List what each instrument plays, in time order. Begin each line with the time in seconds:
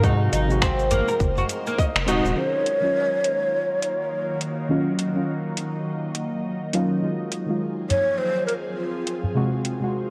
Already playing: analog synth bass G#2
0.02 synth stab C3 G#3 F#4, ambient pad G#3 D#4 A#4 C5, oud D#4, kick, cabasa
0.33 analog synth bass G#1, oud D#4, closed hi-hat, cabasa
0.47 synth stab C3 G#3 F#4, cabasa
0.62 oud C4, finger snap, kick, cabasa
0.79 cabasa
0.91 oud A#3, closed hi-hat, udu, cabasa
1.08 oud A#4, cabasa
1.20 analog synth bass F#1, kick, cabasa
1.37 oud F#4, udu, cabasa
1.49 closed hi-hat, cabasa
1.67 oud A#3, cabasa
1.78 oud D#5, kick, cabasa
1.95 analog synth bass F#1, finger snap, cabasa
2.06 analog synth bass D#1, synth stab C3 G#3 F#4, oud D#4, closed hi-hat, cabasa
2.24 analog synth bass D#1, cabasa
2.35 synth stab D#3 F#3 C#4 F4, ambient pad D#3 F#3 A#3 F4, ney C5
2.48 ney C#5
2.66 closed hi-hat
2.80 synth stab D#3 F#3 C#4 F4
3.24 closed hi-hat
3.82 closed hi-hat
4.41 closed hi-hat
4.69 synth stab D#3 F#3 C#4 F4, ambient pad D#4
4.99 closed hi-hat
5.14 synth stab D#3 F#3 C#4 F4
5.57 closed hi-hat
6.15 closed hi-hat
6.73 synth stab D#3 F#3 C#4 F4, closed hi-hat
7.02 synth stab D#3 G#3 F4, ambient pad F3 C4 F4 G#4
7.32 closed hi-hat
7.46 synth stab D#3 G#3
7.50 synth stab F4
7.90 ney C#5, closed hi-hat, udu
8.18 ney C5
8.46 ney A#4, closed hi-hat
8.76 ney F4
9.07 closed hi-hat
9.24 udu
9.35 synth stab C3 G#3 F#4, ambient pad G#3 D#4 A#4 C5
9.65 closed hi-hat
9.80 synth stab C3 G#3 F#4